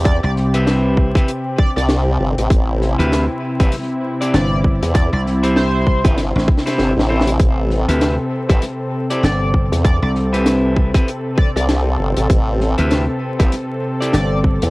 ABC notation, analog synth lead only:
X:1
M:4/4
L:1/16
Q:"Swing 16ths" 1/4=98
K:Am
V:1 name="Analog synth lead"
d d z8 d d z4 | z12 d2 z2 | d d z2 c3 z8 z | z12 d2 z2 |
d d z8 d d z4 | z12 d2 z2 |]